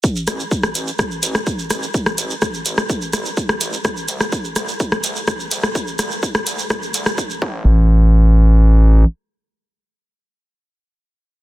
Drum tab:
HH |--x---x---x---x-|--x---x---x---x-|--x---x---x---x-|--x---x---x-----|
SH |xxxxxxxxxxxxxxxx|xxxxxxxxxxxxxxxx|xxxxxxxxxxxxxxxx|xxxxxxxxxxxxxx--|
SD |--r--r--r--r--r-|-r--r--r--r--r--|r--r--r--r--r--r|--r--r--r--r----|
BD |o---o---o---o---|o---o---o---o---|o---o---o---o---|o---o---o---o-o-|

HH |----------------|----------------|
SH |----------------|----------------|
SD |----------------|----------------|
BD |----------------|----------------|